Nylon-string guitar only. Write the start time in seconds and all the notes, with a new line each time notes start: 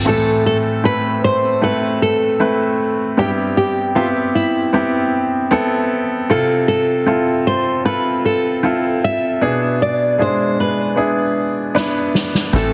0.09 A4
0.46 A4
0.85 B4
1.24 C5
1.64 B4
2.02 A4
3.19 G4
3.57 G4
3.96 F4
4.35 E4
6.30 A4
6.68 A4
7.47 C5
7.86 B4
8.25 A4
9.04 E5
9.82 D5
10.22 C5
10.60 B4
12.56 A4